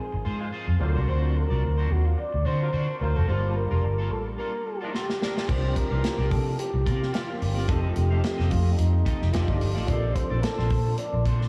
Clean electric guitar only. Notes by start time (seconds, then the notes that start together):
0.12 muted clean electric guitar stroke
0.25 F4 G#4 C5
0.40 muted clean electric guitar stroke
0.52 F4 G#4 C5
0.68 muted clean electric guitar stroke
0.80 muted clean electric guitar stroke
0.95 D4 F#4 C5
1.07 D4 F#4 C5
1.36 muted clean electric guitar stroke
1.50 D4 F#4 D5
1.63 muted clean electric guitar stroke
1.78 D4 F#4 C5
1.91 muted clean electric guitar stroke
2.05 muted clean electric guitar stroke
2.17 muted clean electric guitar stroke
2.32 muted clean electric guitar stroke
2.45 D4 F#4 C5
2.61 muted clean electric guitar stroke
2.73 D4 F#4 C5
2.88 muted clean electric guitar stroke
3.00 muted clean electric guitar stroke
3.15 D4 F#4 C5
3.27 A#3 F4 A4
3.56 muted clean electric guitar stroke
3.71 A#3 F4 A#4
3.83 muted clean electric guitar stroke
3.98 A#3 F4 A4
4.11 muted clean electric guitar stroke
4.26 muted clean electric guitar stroke
4.38 A#3 F4 A4
4.53 muted clean electric guitar stroke
4.66 muted clean electric guitar stroke
4.81 A#3 F4 A4
4.93 A#3 F4 A4
5.08 muted clean electric guitar stroke
5.21 muted clean electric guitar stroke
5.35 A#3 F4 A4
5.48 F4 A#4 D5
5.75 muted clean electric guitar stroke
5.91 F4 A#4 F5
6.03 muted clean electric guitar stroke
6.18 F4 A#4 D5
6.30 muted clean electric guitar stroke
6.46 muted clean electric guitar stroke
6.59 muted clean electric guitar stroke
6.74 muted clean electric guitar stroke
6.86 F4 A#4 D5
7.00 muted clean electric guitar stroke
7.12 F4 A#4 D5
7.28 muted clean electric guitar stroke
7.41 muted clean electric guitar stroke
7.55 F4 A#4 D5
7.68 G4 A4 D#5
7.96 muted clean electric guitar stroke
8.11 G4 A4 F5
8.23 muted clean electric guitar stroke
8.38 G4 A4 D#5
8.51 muted clean electric guitar stroke
8.66 muted clean electric guitar stroke
8.93 muted clean electric guitar stroke
9.05 G4 A4 D#5
9.21 muted clean electric guitar stroke
9.33 D#4 A4 D5
9.48 muted clean electric guitar stroke
9.60 muted clean electric guitar stroke
9.75 D#4 A4 D5
9.88 D4 A4 C5
10.16 muted clean electric guitar stroke
10.30 D4 A4 D5
10.43 muted clean electric guitar stroke
10.58 D4 A4 C5
10.70 muted clean electric guitar stroke
10.85 muted clean electric guitar stroke
10.98 muted clean electric guitar stroke
11.13 muted clean electric guitar stroke
11.25 D4 A4 C5
11.40 muted clean electric guitar stroke